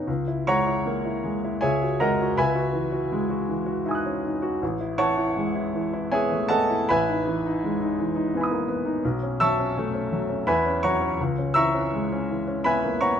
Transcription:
0.00 0.10 C#4 soft
0.00 0.10 D#4 soft
0.00 0.10 C#5 soft
0.00 0.10 D#5 soft
0.00 0.10 F#5 soft
0.07 1.58 C#2 medium
0.28 0.59 E4 soft
0.47 0.78 G#3 soft
0.47 1.59 C#5 medium
0.47 1.59 F#5 medium
0.47 1.59 A#5 medium
0.47 1.62 C#6 medium
0.67 0.98 E4 soft
0.86 1.17 A#3 soft
1.05 1.36 E4 soft
1.24 1.54 G#3 soft
1.44 1.63 E4 soft
1.61 2.34 C#2 soft
1.61 1.97 G#4 medium
1.61 1.97 C#5 medium
1.61 1.97 E5 medium
1.61 1.99 G#5 medium
1.83 2.12 F#4 soft
2.00 2.30 G#3 soft
2.00 2.34 A#4 medium
2.00 2.35 D#5 medium
2.00 2.35 F#5 medium
2.00 2.37 A#5 medium
2.22 2.38 F#4 soft
2.37 4.59 C#2 medium
2.37 4.21 B4 medium
2.37 3.84 E5 medium
2.37 3.87 G#5 medium
2.37 4.25 B5 medium
2.55 2.85 F#4 soft
2.73 3.03 E3 soft
2.92 3.22 F#4 soft
3.12 3.42 G#3 soft
3.30 3.60 F#4 soft
3.49 3.80 E3 soft
3.66 3.98 F#4 soft
3.85 4.17 D#4 soft
3.85 4.57 E5 soft
3.85 4.59 G#5 soft
3.91 4.60 D#6 soft
3.91 4.62 F#6 soft
4.06 4.25 C#4 soft
4.25 4.54 D#4 soft
4.42 4.61 F#4 soft
4.62 6.83 A1 medium
4.80 5.10 E4 soft
4.98 5.28 E3 soft
4.98 6.07 C#5 medium
4.98 6.07 F#5 medium
4.98 6.07 A5 medium
4.98 6.10 C#6 medium
5.17 5.47 E4 soft
5.37 5.66 G#3 soft
5.55 5.85 E4 soft
5.74 6.04 E3 soft
5.93 6.23 E4 medium
6.12 6.42 B3 soft
6.12 6.47 G#4 medium
6.12 6.47 C#5 medium
6.12 6.47 E5 medium
6.12 6.49 G#5 medium
6.32 6.50 A3 soft
6.49 6.80 B3 soft
6.49 6.85 A4 medium
6.49 6.84 D#5 medium
6.49 6.84 F#5 medium
6.49 6.87 A5 medium
6.70 6.88 E4 soft
6.89 9.01 A1 medium
6.89 8.65 B4 medium
6.89 8.33 E5 medium
6.89 8.36 G#5 medium
6.89 8.39 B5 medium
7.09 7.37 D#4 soft
7.27 7.55 E3 soft
7.46 7.74 D#4 soft
7.64 7.92 G#3 soft
7.80 8.08 D#4 medium
7.98 8.26 E3 soft
8.15 8.43 D#4 medium
8.34 8.61 B3 soft
8.34 9.00 E5 soft
8.34 9.01 G#5 soft
8.41 9.03 B5 soft
8.41 9.05 D#6 soft
8.51 8.68 A#3 soft
8.68 8.96 B3 soft
8.85 9.03 D#4 soft
9.05 10.44 B1 medium
9.23 9.51 C#4 soft
9.40 9.69 F#3 soft
9.40 10.44 E5 medium
9.40 10.44 A5 medium
9.40 10.45 C#6 medium
9.40 10.48 E6 medium
9.59 9.87 C#4 soft
9.78 10.06 A3 medium
9.94 10.23 C#4 soft
10.12 10.41 F#3 soft
10.29 10.47 C#4 medium
10.47 11.17 E2 medium
10.47 10.81 B4 medium
10.47 10.81 E5 medium
10.47 10.81 G#5 medium
10.47 10.83 B5 medium
10.66 10.94 C#4 soft
10.83 11.13 F#3 soft
10.83 11.17 C#5 medium
10.83 11.17 F#5 medium
10.83 11.17 A#5 medium
10.83 11.19 C#6 medium
11.01 11.19 C#4 medium
11.20 13.20 C#2 medium
11.38 11.67 C#4 soft
11.54 11.85 E3 soft
11.54 12.61 E5 medium
11.54 12.60 A#5 medium
11.54 12.61 C#6 medium
11.54 12.64 E6 medium
11.74 12.03 C#4 soft
11.94 12.22 G#3 soft
12.12 12.40 C#4 soft
12.30 12.58 E3 soft
12.48 12.76 C#4 soft
12.64 12.94 B3 soft
12.64 12.99 B4 medium
12.64 12.99 E5 medium
12.64 12.99 G#5 medium
12.64 13.00 B5 medium
12.84 13.01 A#3 soft
13.01 13.20 B3 soft
13.01 13.20 C#5 soft
13.01 13.20 F#5 medium
13.01 13.20 A#5 medium
13.01 13.20 C#6 medium

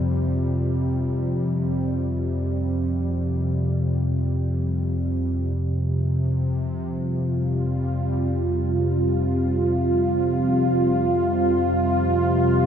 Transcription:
0.00 5.52 F2 medium
0.00 5.52 C3 medium
0.00 5.53 C3 medium
0.00 5.54 G3 medium
0.00 5.54 F4 medium
5.53 12.66 F2 medium
5.53 12.66 C3 medium
6.55 12.66 F4 medium
6.80 12.66 G3 medium

